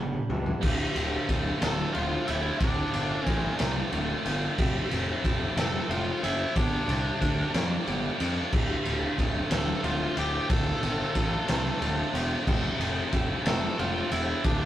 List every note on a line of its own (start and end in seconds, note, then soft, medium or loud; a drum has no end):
0.00 0.18 G1 medium
0.00 0.29 G2 medium
0.00 0.62 G3 medium
0.00 0.62 A#3 medium
0.00 0.29 D4 medium
0.14 mid tom medium
0.29 0.51 C#2 medium
0.29 0.63 D4 medium
0.29 mid tom medium
0.46 floor tom medium
0.61 0.83 D1 loud
0.61 2.59 D2 medium
0.61 1.26 A2 loud
0.61 0.98 D3 loud
0.61 0.96 A3 loud
0.61 0.95 F4 medium
0.61 kick loud
0.61 crash loud
0.95 1.16 D1 medium
0.95 1.28 D3 medium
0.95 1.29 A3 medium
0.95 1.30 F4 medium
0.95 ride medium
1.27 1.49 D1 medium
1.27 1.92 A2 medium
1.27 1.62 D3 medium
1.27 1.61 A3 medium
1.27 1.60 F4 medium
1.27 kick medium
1.27 ride medium
1.60 1.82 D1 loud
1.60 1.93 D3 medium
1.60 1.95 A3 medium
1.60 1.96 F4 medium
1.60 1.93 A4 medium
1.60 1.96 A5 loud
1.60 snare loud
1.60 ride loud
1.93 2.16 D1 medium
1.93 2.59 A2 medium
1.93 2.28 D3 medium
1.93 2.28 A3 medium
1.93 2.25 F4 medium
1.93 2.26 F4 medium
1.93 2.24 F5 medium
1.93 ride medium
2.27 2.49 D1 medium
2.27 2.60 D3 medium
2.27 2.61 A3 medium
2.27 2.60 E4 medium
2.27 2.62 F4 medium
2.27 2.59 E5 medium
2.27 ride medium
2.59 2.81 D1 loud
2.59 3.26 D2 loud
2.59 3.25 A2 medium
2.59 2.94 D3 loud
2.59 2.93 A3 medium
2.59 3.57 D4 medium
2.59 2.92 F4 loud
2.59 3.26 D5 medium
2.59 kick loud
2.59 ride medium
2.92 3.14 G1 medium
2.92 3.25 D3 medium
2.92 3.27 A3 medium
2.92 3.28 F4 medium
2.92 ride medium
3.26 3.47 A1 medium
3.26 3.91 A2 medium
3.26 3.60 D3 medium
3.26 3.59 A3 medium
3.26 3.58 F4 medium
3.26 3.55 C5 medium
3.26 kick medium
3.26 ride medium
3.59 3.80 C2 loud
3.59 3.92 D3 medium
3.59 3.93 A3 medium
3.59 3.95 F4 medium
3.59 snare loud
3.59 ride loud
3.92 4.13 D1 medium
3.92 4.56 A2 medium
3.92 4.25 D3 medium
3.92 4.24 A3 medium
3.92 4.24 F4 medium
3.92 ride medium
4.24 4.46 G1 medium
4.24 4.57 D3 medium
4.24 4.56 A3 medium
4.24 4.59 F4 medium
4.24 ride medium
4.57 4.79 F1 loud
4.57 5.23 F2 loud
4.57 5.24 C3 loud
4.57 4.93 F3 medium
4.57 4.91 A3 loud
4.57 4.90 C4 loud
4.57 4.89 E4 loud
4.57 kick loud
4.57 crash medium
4.90 5.12 F1 medium
4.90 5.23 F3 medium
4.90 5.23 A3 medium
4.90 5.24 C4 medium
4.90 5.24 E4 medium
4.90 ride medium
5.23 5.45 F1 medium
5.23 5.58 F3 medium
5.23 5.57 A3 medium
5.23 5.55 C4 medium
5.23 5.54 E4 medium
5.23 kick medium
5.23 ride medium
5.56 5.77 F1 loud
5.56 5.88 F3 medium
5.56 5.88 A3 medium
5.56 5.89 C4 medium
5.56 5.90 E4 medium
5.56 5.88 A4 medium
5.56 snare loud
5.56 ride loud
5.60 5.92 A5 loud
5.88 6.10 F1 medium
5.88 6.24 F3 medium
5.88 6.23 A3 medium
5.88 6.22 C4 medium
5.88 6.21 E4 medium
5.88 6.21 F4 medium
5.88 6.21 F5 medium
5.88 ride medium
6.22 6.43 F#1 medium
6.22 6.55 F3 medium
6.22 6.54 A3 medium
6.22 6.54 C4 medium
6.22 6.53 E4 medium
6.22 6.54 E4 medium
6.22 6.54 E5 medium
6.22 ride medium
6.54 6.76 G1 loud
6.54 7.21 G2 medium
6.54 7.21 D3 medium
6.54 6.89 G3 loud
6.54 6.88 A#3 medium
6.54 7.50 D4 medium
6.54 6.89 D4 loud
6.54 6.86 G4 loud
6.54 7.51 D5 medium
6.54 kick loud
6.54 ride loud
6.88 7.09 C2 medium
6.88 7.19 G3 medium
6.88 7.20 A#3 medium
6.88 7.22 D4 medium
6.88 7.21 G4 medium
6.88 ride medium
7.20 7.42 D2 medium
7.20 7.55 G3 medium
7.20 7.54 A#3 medium
7.20 7.54 D4 medium
7.20 7.52 G4 medium
7.20 kick medium
7.20 ride medium
7.53 7.75 F2 loud
7.53 7.85 G3 medium
7.53 7.85 A#3 medium
7.53 7.88 D4 medium
7.53 7.87 G4 medium
7.53 snare loud
7.53 ride medium
7.86 8.08 G1 medium
7.86 8.19 G3 medium
7.86 8.19 A#3 medium
7.86 8.19 D4 medium
7.86 8.17 G4 medium
7.86 ride medium
8.18 8.41 F2 medium
8.18 8.51 G3 medium
8.18 8.51 A#3 medium
8.18 11.70 D4 medium
8.18 8.50 G4 medium
8.18 ride medium
8.51 8.73 D1 medium
8.51 10.48 D2 medium
8.51 9.16 A2 medium
8.51 8.86 D3 loud
8.51 8.85 A3 loud
8.51 8.83 F4 loud
8.51 kick loud
8.51 crash medium
8.84 9.06 D1 medium
8.84 9.18 D3 medium
8.84 9.19 A3 medium
8.84 9.19 F4 medium
8.84 ride medium
9.17 9.39 D1 medium
9.17 9.82 A2 medium
9.17 9.51 D3 medium
9.17 9.51 A3 medium
9.17 9.50 F4 medium
9.17 kick medium
9.17 ride medium
9.50 9.71 D1 loud
9.50 9.83 D3 medium
9.50 9.85 A3 medium
9.50 9.85 F4 medium
9.50 9.82 A4 medium
9.50 9.86 A5 loud
9.50 snare loud
9.50 ride loud
9.83 10.04 D1 medium
9.83 10.48 A2 medium
9.83 10.17 D3 medium
9.83 10.18 A3 medium
9.83 10.15 F4 medium
9.83 10.16 F4 medium
9.83 10.15 F5 medium
9.83 ride medium
10.16 10.37 D1 medium
10.16 10.49 D3 medium
10.16 10.50 A3 medium
10.16 10.50 F4 medium
10.16 10.48 G4 medium
10.16 10.48 G5 medium
10.16 ride medium
10.48 10.70 D1 loud
10.48 11.15 D2 medium
10.48 11.13 A2 loud
10.48 10.82 D3 loud
10.48 10.82 A3 loud
10.48 10.80 F4 loud
10.48 12.11 A4 medium
10.48 12.10 A5 medium
10.48 kick loud
10.48 ride loud
10.81 11.03 G1 medium
10.81 11.14 D3 medium
10.81 11.15 A3 medium
10.81 11.16 F4 medium
10.81 ride medium
11.14 11.36 A1 medium
11.14 11.80 A2 medium
11.14 11.49 D3 medium
11.14 11.48 A3 medium
11.14 11.47 F4 medium
11.14 kick medium
11.14 ride medium
11.48 11.69 C2 loud
11.48 11.81 D3 medium
11.48 11.82 A3 medium
11.48 11.83 F4 medium
11.48 snare loud
11.48 ride loud
11.81 12.01 D1 medium
11.81 12.45 A2 medium
11.81 12.15 D3 medium
11.81 12.14 A3 medium
11.81 12.13 F4 medium
11.81 ride medium
12.13 12.34 E1 medium
12.13 12.46 D3 medium
12.13 12.48 A3 medium
12.13 12.48 F4 medium
12.13 ride medium
12.46 12.67 F1 loud
12.46 13.12 F2 medium
12.46 13.13 C3 medium
12.46 12.81 F3 loud
12.46 12.81 A3 loud
12.46 12.79 C4 loud
12.46 12.78 E4 loud
12.46 kick loud
12.46 crash loud
12.79 13.00 F1 medium
12.79 13.12 F3 medium
12.79 13.13 A3 medium
12.79 13.13 C4 medium
12.79 13.14 E4 medium
12.79 ride medium
13.12 13.33 F1 medium
13.12 13.47 F3 medium
13.12 13.47 A3 medium
13.12 13.45 C4 medium
13.12 13.44 E4 medium
13.12 kick medium
13.12 ride medium
13.45 13.67 F1 loud
13.45 13.78 F3 medium
13.45 13.79 A3 medium
13.45 13.79 C4 medium
13.45 13.79 E4 medium
13.45 13.77 A4 medium
13.45 13.80 A5 loud
13.45 snare loud
13.45 ride loud
13.78 14.00 F1 medium
13.78 14.14 F3 medium
13.78 14.13 A3 medium
13.78 14.12 C4 medium
13.78 14.11 E4 medium
13.78 14.10 F4 medium
13.78 14.10 F5 loud
13.78 ride medium
14.11 14.32 E1 medium
14.11 14.45 F3 medium
14.11 14.46 A3 medium
14.11 14.43 C4 medium
14.11 14.43 E4 medium
14.11 14.46 E5 medium
14.11 ride medium
14.44 14.65 D1 loud
14.44 14.65 D2 loud
14.44 14.65 A2 medium
14.44 14.65 D3 loud
14.44 14.65 A3 loud
14.44 14.65 D4 medium
14.44 14.65 F4 loud
14.44 14.65 D5 medium
14.44 kick loud
14.44 ride medium